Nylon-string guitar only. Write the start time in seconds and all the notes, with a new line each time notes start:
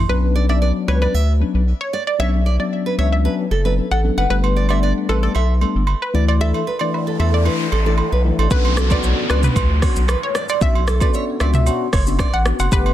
0.35 D5
0.49 E5
0.62 D5
0.88 C#5
1.02 D5
1.14 E5
1.93 D5
2.20 C#5
2.46 D5
2.86 B4
2.99 C#5
3.25 B4
3.51 A4
3.65 B4
3.91 A4
4.18 B4
4.56 D5
4.70 E5
4.83 D5
5.09 B4
5.23 D5
5.35 E5
6.15 D5
6.41 A4
6.67 B4
7.07 A4
7.20 A4
7.46 B4
7.72 A4
7.86 A4
8.12 B4
8.39 A4
8.78 A4
8.91 B4
9.04 C#5
9.30 D5
9.83 C#5
10.09 B4
10.35 D5
10.88 A4
11.02 B4
11.14 C#5
11.41 D5
11.93 C#5
12.20 D5